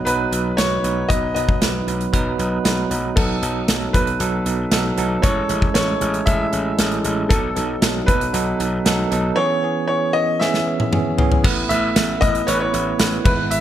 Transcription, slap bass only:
0.06 0.25 B1 medium
0.32 0.51 B1 medium
0.58 0.77 B1 medium
0.84 1.03 B1 medium
1.10 1.29 B1 loud
1.36 1.54 B1 medium
1.61 1.80 B1 medium
1.87 2.06 B1 medium
2.13 2.32 B1 medium
2.39 2.58 B1 medium
2.65 2.84 B1 medium
2.91 3.09 B1 medium
3.17 3.35 B1 medium
3.42 3.61 B1 medium
3.68 3.87 B1 medium
3.94 4.13 B1 medium
4.20 4.39 B1 medium
4.46 4.65 B1 medium
4.72 4.90 B1 loud
4.98 5.16 B1 medium
5.24 5.42 A1 medium
5.49 5.68 A1 medium
5.75 5.94 A1 medium
6.01 6.20 A1 medium
6.27 6.46 A1 loud
6.53 6.72 A1 medium
6.79 6.97 A1 medium
7.05 7.23 A1 medium
7.30 7.49 B1 loud
7.56 7.75 B1 medium
7.82 8.01 B1 loud
8.08 8.27 B1 medium
8.34 8.53 B1 loud
8.60 8.78 B1 medium
8.86 9.04 B1 loud
9.12 9.30 B1 medium
11.44 11.63 A1 medium
11.70 11.89 A1 medium
11.96 12.15 A1 medium
12.22 12.41 A1 loud
12.48 12.66 A1 loud
12.74 12.92 A1 medium
12.99 13.18 A1 loud
13.25 13.61 G#1 medium

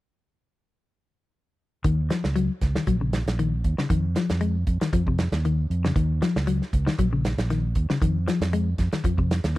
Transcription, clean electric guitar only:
1.84 2.00 D#3 medium
2.10 2.26 F3 medium
2.36 2.51 F#3 medium
2.76 2.83 D#3 medium
2.87 2.96 F#3 medium
3.01 3.17 C#3 medium
3.39 3.55 D#3 medium
3.79 3.86 C#3 medium
3.90 4.06 D#3 medium
4.17 4.32 F3 medium
4.41 4.57 G#3 medium
4.82 4.89 D#3 medium
4.93 5.02 F3 medium
5.08 5.23 C3 medium
5.45 5.60 D#3 medium
5.85 5.92 C#3 medium
5.96 6.11 D#3 medium
6.22 6.37 F3 medium
6.47 6.63 F#3 medium
6.87 6.94 D#3 medium
6.99 7.07 F#3 medium
7.13 7.28 C#3 medium
7.50 7.66 D#3 medium
7.90 7.97 C#3 medium
8.02 8.17 D#3 medium
8.28 8.43 F3 medium
8.53 8.69 G#3 medium
8.93 9.00 D#3 medium
9.05 9.13 F3 medium
9.19 9.34 C3 medium

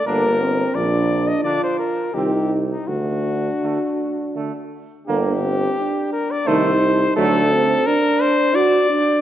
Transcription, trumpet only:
0.07 0.76 A#4 loud
0.75 1.30 D5 loud
1.28 1.44 D#5 loud
1.44 1.61 D5 loud
1.64 1.78 C5 loud
1.79 2.16 A#4 medium
2.14 2.55 G4 medium
2.72 2.89 D#4 medium
2.87 4.71 F#4 medium
5.07 6.09 G4 loud
6.12 6.33 A#4 loud
6.31 6.49 D5 loud
6.47 7.16 C5 loud
7.17 7.88 A4 loud
7.86 8.23 A#4 loud
8.21 8.57 C5 loud
8.55 9.21 D5 loud

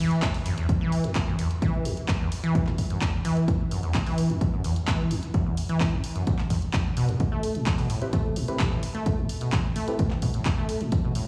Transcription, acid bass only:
0.00 0.24 E3 medium
0.22 0.32 E2 medium
0.46 0.56 F#2 medium
0.58 0.67 E2 medium
0.81 1.06 E3 loud
1.04 1.14 E2 medium
1.27 1.37 F#2 medium
1.39 1.49 E2 medium
1.62 1.87 E3 loud
1.85 1.95 E2 medium
2.09 2.18 F#2 medium
2.20 2.30 E2 medium
2.44 2.68 E3 loud
2.67 2.76 E2 medium
2.90 3.00 F#2 medium
3.02 3.11 E2 medium
3.25 3.50 E3 loud
3.48 3.58 E2 medium
3.71 3.81 F#2 medium
3.83 3.93 E2 medium
4.06 4.31 E3 loud
4.30 4.39 E2 medium
4.53 4.62 F#2 medium
4.64 4.74 E2 medium
4.88 5.12 E3 loud
5.11 5.21 E2 medium
5.34 5.44 F#2 medium
5.46 5.55 E2 medium
5.69 5.94 E3 loud
5.93 6.02 E2 medium
6.16 6.25 F#2 medium
6.27 6.37 E2 medium
6.50 6.57 E2 loud
6.74 6.80 E2 loud
6.97 7.10 B2 loud
7.09 7.15 E2 loud
7.32 7.57 A3 loud
7.55 7.65 A2 medium
7.78 7.88 B2 medium
7.90 8.00 A2 medium
8.13 8.38 A3 loud
8.36 8.46 A2 medium
8.59 8.69 B2 medium
8.71 8.81 A2 medium
8.95 9.19 A3 loud
9.18 9.27 A2 medium
9.41 9.51 B2 medium
9.53 9.62 A2 medium
9.76 10.01 A3 loud
9.99 10.09 A2 medium
10.22 10.32 B2 medium
10.34 10.44 A2 medium
10.57 10.82 A3 loud
10.81 10.90 A2 medium
11.04 11.14 B2 medium
11.15 11.25 A2 medium

